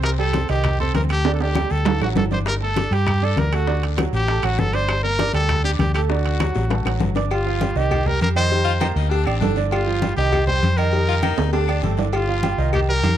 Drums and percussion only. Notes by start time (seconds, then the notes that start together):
0.03 high bongo, high conga, high timbale, long guiro, claves
0.19 high conga
0.33 high bongo, high conga, high timbale, short guiro
0.48 high bongo, high conga, high timbale, short guiro
0.64 high bongo, high conga, low conga, high timbale, long guiro, claves
0.80 high bongo, high conga, low conga
0.94 high bongo, low bongo, high conga, high timbale, short guiro
1.09 high bongo, high conga, high timbale, short guiro, claves
1.24 high bongo, high conga, high timbale, long guiro
1.40 high conga, high timbale
1.55 high bongo, high conga, high timbale, short guiro, claves
1.70 high bongo, high conga, short guiro
1.85 high bongo, low timbale, long guiro
2.01 high bongo, high conga, low timbale, claves
2.15 high bongo, low bongo, high conga, low timbale, short guiro
2.31 high bongo, high conga, low timbale, short guiro
2.46 high bongo, high conga, high timbale, long guiro, claves
2.61 high conga
2.76 high bongo, high conga, high timbale, short guiro
2.92 high bongo, high conga, high timbale, short guiro
3.06 high bongo, high conga, low conga, high timbale, long guiro, claves
3.22 high bongo, high conga
3.37 high bongo, low bongo, high conga, high timbale, short guiro
3.52 high bongo, high conga, high timbale, short guiro, claves
3.67 high bongo, high conga, long guiro
3.83 high conga, high timbale
3.97 high bongo, high conga, high timbale, short guiro, claves
4.13 high bongo, high conga, short guiro
4.28 high bongo, high conga, high timbale, long guiro
4.43 high bongo, high conga, high timbale, claves
4.58 high bongo, low bongo, high conga, short guiro
4.73 high bongo, high timbale, short guiro
4.88 high bongo, high conga, high timbale, long guiro, claves
5.04 high conga
5.19 high bongo, high conga, high timbale, short guiro
5.33 high bongo, high conga, high timbale, short guiro
5.49 high bongo, high conga, low conga, high timbale, long guiro, claves
5.64 high bongo, high conga
5.79 high bongo, low bongo, high conga, high timbale, short guiro
5.95 high bongo, high conga, high timbale, short guiro, claves
6.10 high bongo, high conga, long guiro
6.25 high conga, high timbale
6.39 high bongo, high conga, high timbale, short guiro, claves
6.55 high bongo, high conga, short guiro
6.70 low bongo, high conga, high timbale, long guiro
6.86 low bongo, high conga, high timbale, claves
7.00 low bongo, high conga, short guiro
7.15 low bongo, high timbale, short guiro
7.31 cowbell, high conga, low agogo, long guiro, claves
7.46 high conga
7.60 cowbell, high conga, low agogo, short guiro
7.76 high conga, short guiro
7.91 cowbell, high conga, low conga, low agogo, long guiro, claves
8.06 high conga, low conga
8.21 cowbell, high conga, low agogo, short guiro
8.36 cowbell, high conga, low agogo, short guiro, claves
8.51 cowbell, high conga, long guiro
8.67 high conga
8.81 cowbell, high conga, low agogo, short guiro, claves
8.96 cowbell, high conga, short guiro
9.11 cowbell, high conga, low agogo, long guiro
9.27 high conga, low agogo, claves
9.41 cowbell, high conga, low timbale, short guiro
9.56 short guiro
9.71 cowbell, high conga, low agogo, long guiro, claves
9.87 high conga
10.02 cowbell, high conga, low agogo, short guiro
10.17 high conga, short guiro
10.32 cowbell, high conga, low conga, low agogo, long guiro, claves
10.47 high conga, low conga
10.62 cowbell, high conga, low agogo, short guiro
10.77 cowbell, high conga, low agogo, short guiro, claves
10.92 cowbell, high conga, long guiro
11.08 high conga
11.22 cowbell, high conga, low agogo, short guiro, claves
11.36 cowbell, high conga, high timbale, short guiro
11.51 cowbell, high conga, high timbale, low agogo, long guiro
11.68 high conga, low agogo, claves
11.82 cowbell, high conga, short guiro
11.97 low timbale, short guiro
12.13 cowbell, high conga, low agogo, long guiro, claves
12.28 high conga
12.43 cowbell, high conga, low agogo, short guiro
12.58 short guiro
12.73 cowbell, high conga, low conga, low agogo, long guiro, claves
12.89 high conga
13.03 cowbell, high conga, low timbale, low agogo, short guiro